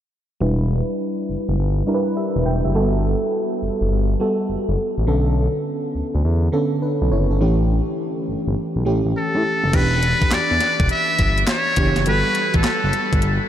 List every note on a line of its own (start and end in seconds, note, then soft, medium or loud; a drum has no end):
0.41 0.82 E1 loud
0.41 1.51 G3 medium
0.41 1.52 D4 medium
0.41 1.52 E4 medium
0.41 1.52 B4 medium
1.29 1.37 F#1 soft
1.49 1.57 F#1 medium
1.58 1.82 G1 medium
1.87 2.70 G3 medium
1.87 2.70 D4 medium
1.87 2.70 E4 medium
1.87 1.96 A#4 medium
1.94 2.20 B4 medium
2.17 2.44 G4 medium
2.17 2.44 E5 medium
2.36 2.44 E1 medium
2.46 2.62 E1 loud
2.46 2.64 B4 medium
2.46 2.64 G5 medium
2.65 2.73 F#1 medium
2.65 2.92 G4 medium
2.65 2.92 E5 medium
2.74 3.15 G1 loud
2.74 3.85 G3 medium
2.74 2.83 A#3 medium
2.74 3.85 F#4 medium
2.74 3.85 A4 medium
2.81 3.88 B3 medium
3.62 3.70 F#1 soft
3.81 3.89 F#1 medium
3.91 4.15 G1 loud
4.20 5.03 G3 medium
4.20 5.03 B3 medium
4.20 5.03 F#4 medium
4.20 5.03 A4 medium
4.49 4.57 F#1 soft
4.69 4.77 F#1 medium
4.98 5.06 A1 medium
5.07 5.48 B1 loud
5.07 6.18 D3 medium
5.07 6.18 B3 medium
5.07 6.18 C#4 medium
5.07 6.18 A4 medium
5.95 6.03 D2 medium
6.15 6.23 D2 medium
6.25 6.49 E2 medium
6.52 7.35 D3 medium
6.52 7.36 B3 medium
6.52 6.82 C#4 medium
6.52 6.82 A4 medium
6.82 7.10 D4 medium
6.82 7.10 B4 medium
7.02 7.10 B1 medium
7.11 7.27 F#1 medium
7.11 7.30 E4 medium
7.11 7.29 C#5 medium
7.30 7.39 G1 medium
7.30 7.40 C#4 medium
7.30 7.58 A4 medium
7.40 7.81 A1 loud
7.40 8.51 E3 medium
7.40 8.51 A3 medium
7.40 8.51 C#4 medium
7.40 8.52 G4 medium
8.28 8.36 G1 soft
8.47 8.55 G1 medium
8.76 8.84 B1 medium
8.85 9.02 A1 medium
8.85 9.68 E3 medium
8.85 9.69 A3 medium
8.85 9.69 C#4 medium
8.85 9.69 G4 medium
9.05 9.14 A1 medium
9.17 9.77 A4 medium
9.34 9.43 A2 loud
9.64 9.72 F#1 medium
9.73 10.14 E1 loud
9.73 10.84 E3 medium
9.73 10.84 B3 medium
9.73 10.84 D4 medium
9.73 10.84 G4 medium
9.73 10.35 B4 loud
9.73 kick loud
9.73 closed hi-hat medium
9.73 crash medium
10.03 closed hi-hat medium
10.22 kick medium
10.22 closed hi-hat soft
10.31 10.39 E2 soft
10.31 10.91 D5 loud
10.31 snare loud
10.31 clap medium
10.31 closed hi-hat medium
10.51 10.59 E2 medium
10.60 snare medium
10.60 closed hi-hat medium
10.80 10.88 E1 loud
10.80 kick medium
10.80 closed hi-hat soft
10.89 11.45 E5 loud
10.89 closed hi-hat medium
11.19 11.43 G1 medium
11.19 kick medium
11.19 closed hi-hat medium
11.38 closed hi-hat soft
11.47 12.03 C#5 medium
11.47 snare loud
11.47 clap medium
11.47 closed hi-hat medium
11.76 11.93 F#1 loud
11.76 12.05 E3 medium
11.76 12.05 B3 medium
11.76 12.05 D4 medium
11.76 12.06 G4 medium
11.76 kick loud
11.76 closed hi-hat medium
11.96 12.05 F#1 medium
11.96 snare medium
11.96 closed hi-hat medium
12.06 12.23 G1 loud
12.06 13.17 G3 medium
12.06 13.17 B3 medium
12.06 13.17 F#4 medium
12.06 13.17 A4 medium
12.06 12.52 B4 loud
12.06 closed hi-hat medium
12.35 closed hi-hat medium
12.54 12.63 A1 medium
12.54 13.39 A4 medium
12.54 kick medium
12.54 closed hi-hat soft
12.64 snare loud
12.64 clap medium
12.64 closed hi-hat medium
12.84 12.92 F#1 medium
12.93 closed hi-hat medium
13.13 13.21 G1 medium
13.13 kick medium
13.13 closed hi-hat medium
13.22 13.39 G1 loud
13.22 closed hi-hat medium